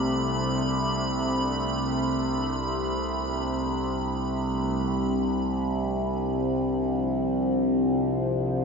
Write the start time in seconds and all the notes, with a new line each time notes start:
Already playing: C2 C3 A3 D4 G4 C5 B5
4.87 C2 C3 F3